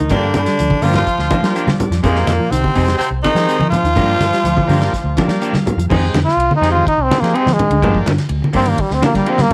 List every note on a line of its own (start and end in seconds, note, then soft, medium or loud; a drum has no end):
0.00 0.10 D2 medium
0.00 0.11 D#3 medium
0.00 0.08 D#3 medium
0.00 0.10 D#4 medium
0.00 muted clean electric guitar stroke soft
0.09 0.31 G2 loud
0.09 0.25 F3 medium
0.09 0.40 A#3 medium
0.09 0.25 A#3 medium
0.09 0.41 D4 medium
0.09 0.33 D4 medium
0.09 0.25 D4 medium
0.09 0.41 F4 medium
0.09 0.25 G4 medium
0.09 0.41 G4 medium
0.09 kick loud
0.09 closed hi-hat medium
0.09 high conga soft
0.09 low conga medium
0.14 0.35 D3 medium
0.14 0.36 D3 medium
0.34 0.45 G2 medium
0.34 0.84 D4 medium
0.34 muted clean electric guitar stroke soft
0.34 closed hi-hat soft
0.34 high conga loud
0.38 0.87 D3 medium
0.38 0.88 D3 medium
0.46 0.56 G3 medium
0.46 snare soft
0.46 closed hi-hat medium
0.58 0.70 D2 medium
0.58 0.77 F3 medium
0.58 muted clean electric guitar stroke soft
0.58 closed hi-hat medium
0.58 high conga soft
0.70 muted fingered electric bass stroke soft
0.70 muted clean electric guitar stroke soft
0.70 kick medium
0.70 high conga medium
0.82 1.03 G2 medium
0.82 1.01 D3 medium
0.82 0.95 F3 medium
0.82 0.96 F3 medium
0.82 1.07 A#3 medium
0.82 0.95 A#3 medium
0.82 1.07 D4 medium
0.82 0.95 D4 medium
0.82 0.95 F4 loud
0.82 1.08 F4 medium
0.82 1.08 G4 medium
0.82 0.95 G4 loud
0.82 open hi-hat medium
0.82 high conga medium
0.87 0.97 F3 medium
0.94 1.76 F3 medium
0.94 1.76 F4 medium
0.94 muted clean electric guitar stroke soft
0.94 snare medium
0.94 closed hi-hat medium
0.94 low conga medium
0.98 1.77 F3 medium
1.07 muted fingered electric bass stroke soft
1.07 kick medium
1.07 closed hi-hat medium
1.07 high conga soft
1.18 1.29 D2 medium
1.18 muted clean electric guitar stroke soft
1.18 snare soft
1.31 1.43 F3 medium
1.31 1.49 F3 medium
1.31 1.43 A#3 medium
1.31 1.42 D4 medium
1.31 1.42 G4 medium
1.31 kick medium
1.31 closed hi-hat medium
1.31 high conga loud
1.43 1.53 G3 medium
1.43 1.69 A#3 medium
1.43 1.69 D4 medium
1.43 1.69 F4 medium
1.43 1.69 G4 loud
1.43 muted clean electric guitar stroke medium
1.43 snare medium
1.43 closed hi-hat medium
1.55 1.70 A#3 medium
1.55 1.70 D4 loud
1.55 1.70 G4 loud
1.55 2.01 D5 medium
1.55 closed hi-hat medium
1.67 1.77 G3 medium
1.67 snare medium
1.67 high conga medium
1.79 1.88 G3 medium
1.79 muted clean electric guitar stroke soft
1.79 closed hi-hat medium
1.79 low conga medium
1.90 2.01 F2 medium
1.90 2.00 F3 medium
1.90 muted clean electric guitar stroke soft
1.90 snare soft
1.90 closed hi-hat medium
2.03 2.24 F2 loud
2.03 2.53 A#2 medium
2.03 2.55 A#2 medium
2.03 2.33 G#3 medium
2.03 2.52 A#3 medium
2.03 2.18 C4 medium
2.03 2.33 C4 medium
2.03 2.33 D#4 medium
2.03 2.18 D#4 medium
2.03 2.34 G4 medium
2.03 2.18 G#4 loud
2.03 kick loud
2.03 closed hi-hat medium
2.03 high conga soft
2.03 low conga medium
2.16 snare soft
2.27 2.38 F2 medium
2.27 muted clean electric guitar stroke soft
2.27 snare soft
2.27 closed hi-hat medium
2.27 high conga medium
2.40 2.48 F3 medium
2.51 2.62 C2 medium
2.51 2.99 C3 medium
2.51 3.00 C3 medium
2.51 2.69 D#3 medium
2.51 2.97 C4 medium
2.51 muted clean electric guitar stroke soft
2.51 closed hi-hat medium
2.51 high conga soft
2.64 muted clean electric guitar stroke soft
2.64 muted fingered electric bass stroke soft
2.64 kick medium
2.64 high conga medium
2.75 2.96 F2 loud
2.75 2.93 C3 medium
2.75 3.00 G#3 medium
2.75 2.87 C4 medium
2.75 3.01 C4 medium
2.75 2.87 D#4 medium
2.75 3.01 D#4 medium
2.75 3.01 G4 medium
2.75 2.86 G#4 medium
2.75 kick medium
2.75 open hi-hat medium
2.87 muted clean electric guitar stroke soft
2.87 snare medium
2.87 closed hi-hat medium
2.98 3.10 C3 medium
2.98 3.11 C3 medium
2.98 3.09 C4 medium
2.98 muted fingered electric bass stroke soft
2.98 closed hi-hat medium
2.98 high conga soft
3.10 3.21 C2 medium
3.10 muted clean electric guitar stroke soft
3.23 3.69 D#3 medium
3.23 3.36 C4 medium
3.23 3.68 D#4 loud
3.23 3.35 D#4 medium
3.23 3.35 G#4 medium
3.23 muted clean electric guitar stroke medium
3.23 kick medium
3.23 closed hi-hat medium
3.23 high conga loud
3.35 3.46 F3 medium
3.35 3.61 G#3 medium
3.35 3.61 C4 medium
3.35 3.61 D#4 medium
3.35 3.61 G4 medium
3.35 muted clean electric guitar stroke soft
3.35 snare medium
3.35 closed hi-hat medium
3.48 3.63 C4 medium
3.48 3.63 D#4 medium
3.48 3.63 G#4 medium
3.48 closed hi-hat medium
3.59 3.70 F3 loud
3.59 high conga medium
3.70 5.37 F3 medium
3.70 5.36 F4 loud
3.70 muted clean electric guitar stroke soft
3.70 closed hi-hat medium
3.70 low conga medium
3.74 3.82 F3 medium
3.83 3.94 D#2 loud
3.83 3.94 D#3 medium
3.83 muted clean electric guitar stroke soft
3.83 closed hi-hat soft
3.96 4.17 G2 loud
3.96 4.11 F3 medium
3.96 4.26 A#3 medium
3.96 4.11 A#3 medium
3.96 4.27 D4 medium
3.96 4.12 D4 medium
3.96 4.27 F4 medium
3.96 4.27 G4 medium
3.96 4.12 G4 medium
3.96 kick medium
3.96 closed hi-hat medium
3.96 high conga soft
3.96 low conga medium
4.20 4.30 G2 medium
4.20 muted clean electric guitar stroke soft
4.20 snare soft
4.20 closed hi-hat soft
4.20 high conga medium
4.33 4.42 G3 medium
4.33 snare soft
4.33 closed hi-hat soft
4.44 4.55 D2 medium
4.44 4.63 F3 medium
4.44 muted clean electric guitar stroke soft
4.44 closed hi-hat medium
4.44 high conga soft
4.57 muted fingered electric bass stroke soft
4.57 muted clean electric guitar stroke soft
4.57 kick medium
4.57 high conga medium
4.67 4.89 G2 medium
4.67 4.87 D3 medium
4.67 4.81 F3 loud
4.67 4.93 A#3 medium
4.67 4.81 A#3 medium
4.67 4.93 D4 medium
4.67 4.81 D4 loud
4.67 4.94 F4 medium
4.67 4.94 G4 loud
4.67 4.81 G4 loud
4.67 open hi-hat medium
4.67 high conga medium
4.82 muted clean electric guitar stroke soft
4.82 snare medium
4.82 closed hi-hat medium
4.93 muted fingered electric bass stroke soft
4.93 kick medium
4.93 snare soft
4.93 closed hi-hat medium
4.93 high conga soft
5.04 5.15 D2 medium
5.04 muted clean electric guitar stroke medium
5.17 5.29 F3 medium
5.17 5.35 F3 medium
5.17 5.29 A#3 medium
5.17 5.29 D4 medium
5.17 5.29 G4 medium
5.17 5.39 D5 medium
5.17 kick medium
5.17 snare soft
5.17 closed hi-hat medium
5.17 high conga loud
5.28 5.39 G3 loud
5.28 5.53 A#3 loud
5.28 5.54 D4 medium
5.28 5.54 F4 medium
5.28 5.54 G4 loud
5.28 muted clean electric guitar stroke soft
5.28 snare medium
5.28 closed hi-hat medium
5.41 5.56 F3 medium
5.41 5.56 A#3 medium
5.41 5.56 D4 loud
5.41 5.56 G4 loud
5.41 5.86 F5 medium
5.41 closed hi-hat medium
5.53 5.63 G3 loud
5.53 snare medium
5.53 high conga medium
5.66 5.75 G3 medium
5.66 muted clean electric guitar stroke soft
5.66 closed hi-hat medium
5.66 low conga medium
5.76 5.87 F2 medium
5.76 5.87 F3 medium
5.76 muted clean electric guitar stroke soft
5.76 closed hi-hat medium
5.89 6.10 F2 loud
5.89 6.08 D#3 loud
5.89 6.19 G#3 medium
5.89 6.04 C4 medium
5.89 6.20 C4 medium
5.89 6.20 D#4 medium
5.89 6.05 D#4 medium
5.89 6.20 G4 loud
5.89 6.05 G#4 loud
5.89 kick loud
5.89 crash loud
5.89 high conga soft
5.89 low conga medium
6.14 6.24 F2 medium
6.14 6.32 D3 medium
6.14 muted clean electric guitar stroke soft
6.14 snare medium
6.14 ride bell medium
6.14 high conga loud
6.25 6.54 F4 loud
6.25 snare soft
6.37 6.47 C2 loud
6.37 muted clean electric guitar stroke soft
6.37 ride bell medium
6.37 high conga soft
6.49 muted fingered electric bass stroke soft
6.49 muted clean electric guitar stroke soft
6.49 high conga medium
6.56 6.70 D#4 medium
6.61 6.82 F2 loud
6.61 6.87 G#3 medium
6.61 6.74 C4 medium
6.61 6.87 C4 medium
6.61 6.73 D#4 loud
6.61 6.87 D#4 medium
6.61 6.87 G4 loud
6.61 6.72 G#4 medium
6.61 snare soft
6.61 ride bell medium
6.71 6.86 F4 medium
6.71 muted clean electric guitar stroke soft
6.75 6.92 D#3 medium
6.87 7.05 D#4 loud
6.87 kick medium
6.87 ride bell medium
6.87 high conga soft
6.98 7.08 C2 medium
6.98 muted clean electric guitar stroke medium
7.03 7.22 C4 medium
7.10 7.22 C4 medium
7.10 7.22 D#4 medium
7.10 7.21 G#4 medium
7.10 muted fingered electric bass stroke soft
7.10 snare medium
7.10 ride bell soft
7.10 high conga loud
7.20 7.32 F3 medium
7.20 7.47 G#3 medium
7.20 7.37 A#3 medium
7.20 7.47 C4 medium
7.20 7.48 D#4 medium
7.20 7.48 G4 loud
7.20 muted clean electric guitar stroke soft
7.20 snare soft
7.20 ride bell medium
7.34 7.48 C4 medium
7.34 7.54 C4 medium
7.34 7.49 D#4 medium
7.34 7.49 G#4 loud
7.34 ride bell soft
7.46 7.56 F3 medium
7.46 snare medium
7.46 high conga medium
7.53 7.98 G#3 loud
7.59 7.68 D#3 medium
7.59 muted clean electric guitar stroke soft
7.59 ride bell medium
7.59 low conga medium
7.70 7.80 D2 loud
7.70 7.80 D3 medium
7.70 muted clean electric guitar stroke soft
7.70 ride bell medium
7.82 8.03 G2 loud
7.82 7.97 F3 medium
7.82 8.00 F3 loud
7.82 7.97 A#3 medium
7.82 8.12 A#3 medium
7.82 7.97 D4 medium
7.82 8.13 D4 medium
7.82 8.13 F4 medium
7.82 7.97 G4 medium
7.82 8.13 G4 medium
7.82 kick loud
7.82 ride bell medium
7.82 high conga soft
7.82 low conga loud
7.95 kick medium
8.06 8.17 G2 medium
8.06 8.25 D3 medium
8.06 muted clean electric guitar stroke soft
8.06 snare medium
8.06 ride bell medium
8.06 high conga loud
8.18 snare soft
8.18 ride bell medium
8.29 8.40 D2 loud
8.29 muted clean electric guitar stroke medium
8.29 ride bell medium
8.29 high conga soft
8.42 muted clean electric guitar stroke soft
8.42 muted fingered electric bass stroke soft
8.42 high conga medium
8.53 8.75 G2 loud
8.53 8.66 F3 medium
8.53 8.65 A#3 medium
8.53 8.79 A#3 medium
8.53 8.71 C4 loud
8.53 8.65 D4 medium
8.53 8.80 D4 medium
8.53 8.80 F4 medium
8.53 8.65 G4 loud
8.53 8.80 G4 medium
8.53 kick medium
8.53 open hi-hat medium
8.66 8.84 D#3 medium
8.66 8.82 A#3 loud
8.66 muted clean electric guitar stroke soft
8.66 ride bell medium
8.78 8.95 G3 medium
8.78 muted fingered electric bass stroke soft
8.78 kick medium
8.78 ride bell medium
8.78 high conga soft
8.89 9.01 D2 medium
8.89 muted clean electric guitar stroke soft
8.89 snare soft
8.94 9.03 C4 medium
9.01 9.20 D3 loud
9.01 9.14 F3 medium
9.01 9.14 A#3 medium
9.01 9.14 D4 medium
9.01 9.13 G4 medium
9.01 snare medium
9.01 ride bell medium
9.01 high conga loud
9.05 9.15 A#3 medium
9.14 9.25 G3 medium
9.14 9.31 G3 medium
9.14 9.39 A#3 medium
9.14 9.40 D4 medium
9.14 9.40 F4 medium
9.14 9.40 G4 medium
9.14 muted clean electric guitar stroke medium
9.14 kick medium
9.14 snare soft
9.14 ride bell medium
9.26 9.41 F3 medium
9.26 9.41 A#3 medium
9.26 9.43 C4 loud
9.26 9.41 D4 medium
9.26 9.42 G4 medium
9.26 ride bell medium
9.38 9.49 G3 loud
9.38 9.54 A#3 loud
9.38 snare medium
9.38 high conga loud